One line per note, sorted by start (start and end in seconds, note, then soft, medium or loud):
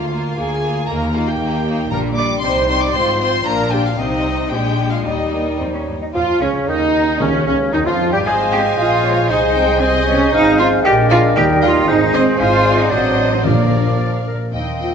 0.00 0.32 D2 soft
0.00 0.11 A#3 soft
0.00 1.92 A#3 soft
0.00 0.11 F4 soft
0.00 0.38 F4 soft
0.00 0.89 F4 soft
0.00 0.37 F5 medium
0.12 0.36 A#3 soft
0.12 0.36 F4 soft
0.37 0.83 D2 soft
0.37 0.61 A#3 soft
0.37 0.62 F4 soft
0.37 0.89 G#4 medium
0.37 0.89 G#5 medium
0.63 0.87 A#3 soft
0.63 0.88 F4 soft
0.88 1.34 D#2 medium
0.88 1.12 A#3 soft
0.88 1.12 D#4 soft
0.88 1.89 D#4 soft
0.88 1.15 A#4 soft
0.88 1.14 A#5 medium
1.13 1.39 A#3 soft
1.13 1.38 D#4 soft
1.13 1.28 F4 medium
1.13 1.28 F5 medium
1.28 1.92 G4 medium
1.28 1.92 G5 medium
1.39 1.85 D#2 medium
1.39 1.64 A#3 soft
1.39 1.64 D#4 soft
1.65 1.91 A#3 soft
1.65 1.91 D#4 soft
1.90 2.36 A#1 medium
1.90 2.36 A#2 medium
1.90 2.39 A#2 medium
1.90 2.14 G3 medium
1.90 2.93 G3 medium
1.90 2.14 D4 soft
1.90 2.43 D4 soft
1.90 2.00 A#4 medium
1.90 1.98 A#5 medium
2.15 2.40 G3 soft
2.15 2.41 D4 soft
2.15 2.26 D5 medium
2.15 2.42 D6 medium
2.41 2.88 C2 medium
2.41 2.88 C3 medium
2.41 2.66 G3 medium
2.41 2.66 D#4 soft
2.41 2.95 D#4 medium
2.41 2.68 C5 medium
2.41 2.67 C6 medium
2.67 2.93 G3 medium
2.67 2.93 D#4 soft
2.67 2.74 C5 medium
2.67 2.81 C6 medium
2.80 2.94 D5 medium
2.80 2.94 D6 medium
2.92 3.40 G#1 medium
2.92 3.40 G#2 medium
2.92 3.18 C4 medium
2.92 3.18 F4 medium
2.92 3.20 C5 medium
2.92 3.18 C6 medium
2.97 4.00 F3 medium
2.97 3.46 F4 medium
3.19 3.45 C4 soft
3.19 3.44 F4 medium
3.19 3.46 C5 medium
3.19 3.45 C6 medium
3.45 3.92 A#1 medium
3.45 3.92 A#2 medium
3.45 3.71 D4 medium
3.45 3.99 D4 medium
3.45 3.70 F4 medium
3.45 3.72 A#4 medium
3.45 3.72 A#5 medium
3.71 3.98 D4 medium
3.71 3.97 F4 soft
3.71 3.85 G4 medium
3.71 3.85 G5 medium
3.85 3.98 F4 medium
3.85 3.99 F5 medium
3.97 4.47 C2 medium
3.97 4.47 C3 medium
3.97 4.50 G3 medium
3.97 4.48 C4 medium
3.97 4.50 D#4 medium
3.97 4.48 D#4 medium
3.97 4.51 D#4 medium
3.97 4.51 D#5 medium
4.50 5.05 A#1 medium
4.50 5.04 A#2 medium
4.50 5.05 G#3 medium
4.50 5.05 D4 medium
4.50 4.91 G4 medium
4.50 4.91 G5 medium
4.91 5.05 F4 soft
4.91 5.05 F5 medium
5.04 5.32 D#2 soft
5.04 5.93 D#2 soft
5.04 5.94 G3 soft
5.04 5.88 G3 soft
5.04 5.92 D#4 soft
5.04 5.60 D#4 soft
5.04 5.88 D#4 soft
5.04 5.59 D#5 medium
5.32 5.40 A#3 medium
5.32 5.59 A#4 medium
5.58 5.68 F2 soft
5.58 5.66 C4 medium
5.58 5.76 C5 medium
5.73 5.81 C#4 soft
5.73 6.01 C#5 soft
5.88 5.96 G2 soft
6.01 6.07 D#4 soft
6.01 6.07 D#5 soft
6.14 6.23 F2 medium
6.14 6.26 F3 medium
6.14 6.39 F3 medium
6.14 6.39 F4 medium
6.14 6.40 F4 medium
6.14 6.27 F4 medium
6.14 6.41 F4 medium
6.14 6.40 F4 medium
6.14 6.41 F5 medium
6.40 6.49 C#2 medium
6.40 6.67 C#3 medium
6.40 6.70 C#3 medium
6.40 6.48 C#4 medium
6.40 6.49 C#4 medium
6.40 6.50 C#4 medium
6.40 6.68 C#4 medium
6.40 6.54 C#4 medium
6.40 6.68 C#4 medium
6.40 6.48 C#5 medium
6.67 7.19 D#2 medium
6.67 7.19 D#3 medium
6.67 7.21 D#3 medium
6.67 7.19 D#4 medium
6.67 7.20 D#4 medium
6.67 7.19 D#5 medium
7.19 7.28 C#2 medium
7.19 7.31 C#3 medium
7.19 7.46 C#3 medium
7.19 7.95 D#3 medium
7.19 7.46 C#4 medium
7.19 7.45 C#4 medium
7.19 7.46 C#4 medium
7.19 7.33 C#4 medium
7.19 7.46 C#4 medium
7.19 7.47 C#4 medium
7.19 7.26 C#5 medium
7.46 7.73 C#2 medium
7.46 7.76 C#3 medium
7.46 7.72 C#3 medium
7.46 7.55 C#4 medium
7.46 7.72 C#4 medium
7.46 7.55 C#4 medium
7.46 7.73 C#4 medium
7.46 7.56 C#4 medium
7.46 7.52 C#5 medium
7.72 7.86 D#2 medium
7.72 7.86 D#3 medium
7.72 7.89 D#3 medium
7.72 7.77 D#4 medium
7.72 7.78 D#4 medium
7.72 7.85 D#4 medium
7.72 7.88 D#4 medium
7.72 7.79 D#4 medium
7.72 7.85 D#5 medium
7.86 8.11 F2 medium
7.86 8.12 F3 medium
7.86 8.11 F4 medium
7.86 8.12 F4 medium
7.86 7.95 F4 medium
7.86 7.92 F5 medium
8.11 8.25 G2 medium
8.11 8.25 G3 medium
8.11 8.18 G3 medium
8.11 8.24 G4 medium
8.11 8.25 G4 medium
8.11 8.18 G4 medium
8.11 8.26 G4 medium
8.11 8.17 G5 medium
8.24 8.73 G#1 medium
8.24 9.26 G#3 medium
8.24 8.34 G#4 medium
8.24 9.26 C5 medium
8.24 8.74 C5 medium
8.24 9.26 D#5 medium
8.24 9.27 F5 medium
8.24 9.25 G#5 medium
8.24 8.50 G#5 medium
8.50 8.61 G#3 medium
8.50 8.61 C4 medium
8.50 8.60 G4 medium
8.50 8.78 G5 medium
8.77 9.30 A#1 medium
8.77 9.29 F4 medium
8.77 9.04 D#5 medium
8.77 9.31 F5 medium
9.04 9.13 G#3 medium
9.04 9.13 C4 medium
9.04 9.30 C#5 medium
9.29 10.33 C2 medium
9.29 9.81 G#3 medium
9.29 9.81 D#4 medium
9.29 9.80 C5 medium
9.29 9.81 C5 medium
9.29 9.83 D#5 medium
9.29 9.80 D#5 medium
9.29 9.81 D#5 medium
9.29 9.37 G#5 medium
9.54 9.65 G#3 medium
9.54 9.65 C4 medium
9.54 9.80 G5 medium
9.80 10.32 G#3 medium
9.80 10.07 C4 medium
9.80 10.32 C5 medium
9.80 10.08 C5 medium
9.80 10.32 D#5 medium
9.80 10.33 D#5 medium
9.80 10.32 D#5 medium
9.80 10.32 G#5 medium
10.06 10.17 G#3 medium
10.06 10.17 C4 medium
10.06 10.32 C#4 loud
10.06 10.32 C#5 medium
10.32 10.76 G#1 medium
10.32 10.81 F3 medium
10.32 11.38 G#3 medium
10.32 10.81 C4 medium
10.32 10.58 D#4 loud
10.32 10.86 C5 medium
10.32 10.58 D#5 medium
10.32 10.87 F5 medium
10.58 10.67 F4 loud
10.58 10.67 C5 medium
10.58 10.83 F5 loud
10.58 10.67 F5 medium
10.58 10.66 G#5 medium
10.84 11.28 A#1 medium
10.84 11.36 G#3 medium
10.84 11.36 D4 medium
10.84 10.93 G4 loud
10.84 11.90 A#4 medium
10.84 11.38 D5 medium
10.84 11.09 G5 loud
11.09 11.19 F4 loud
11.09 11.18 A#4 medium
11.09 11.18 D5 medium
11.09 11.38 F5 medium
11.09 11.17 G#5 medium
11.35 11.79 D#2 medium
11.35 11.85 D#3 medium
11.35 11.88 G3 medium
11.35 11.87 G3 medium
11.35 11.87 D#4 medium
11.35 11.44 G4 loud
11.35 12.40 D#5 medium
11.35 11.61 G5 loud
11.62 11.88 F4 loud
11.62 11.71 A#4 medium
11.62 11.70 D#5 medium
11.62 11.68 F5 medium
11.62 11.70 G5 medium
11.87 12.31 G#1 medium
11.87 12.39 G#3 medium
11.87 12.38 G#3 medium
11.87 12.39 C4 medium
11.87 12.14 D#4 loud
11.87 12.38 C5 medium
11.87 11.94 D#5 medium
12.13 12.40 C4 medium
12.13 12.21 C5 medium
12.13 12.38 C5 medium
12.13 12.22 D#5 medium
12.13 12.21 G#5 medium
12.38 12.88 G#1 medium
12.38 12.92 G#3 medium
12.38 12.88 G#3 medium
12.38 12.88 C4 medium
12.38 12.79 F4 loud
12.38 12.63 C5 medium
12.38 12.88 C5 medium
12.38 12.94 C5 medium
12.38 12.79 F5 medium
12.38 12.87 G#5 medium
12.64 12.91 D5 medium
12.77 12.92 D#4 medium
12.77 12.92 D#5 medium
12.90 13.45 A1 medium
12.90 13.47 F#3 medium
12.90 13.46 F#3 medium
12.90 13.45 C4 medium
12.90 13.31 D4 medium
12.90 13.44 C5 medium
12.90 13.30 D5 medium
12.90 13.45 D#5 medium
12.90 13.47 D#5 medium
12.90 13.45 F#5 medium
13.31 13.45 C4 medium
13.31 13.44 C5 medium
13.44 14.33 A#1 medium
13.44 14.23 A#2 medium
13.44 14.27 F3 medium
13.44 13.98 A#3 medium
13.44 14.28 D4 medium
13.44 13.98 A#4 medium
13.44 14.33 A#4 medium
13.44 13.93 A#4 soft
13.44 14.33 D5 medium
13.44 14.27 D5 medium
13.44 14.31 F5 soft
13.99 14.12 D5 medium
14.27 14.53 A#4 medium
14.52 14.95 D#2 soft
14.52 14.95 A#3 soft
14.52 14.95 C4 soft
14.52 14.66 D#4 soft
14.52 14.78 D#5 soft
14.52 14.95 D#5 soft
14.52 14.95 G5 soft
14.52 14.77 G5 soft
14.52 14.78 G5 soft
14.78 14.95 F4 medium
14.78 14.95 D#5 soft
14.78 14.95 G5 soft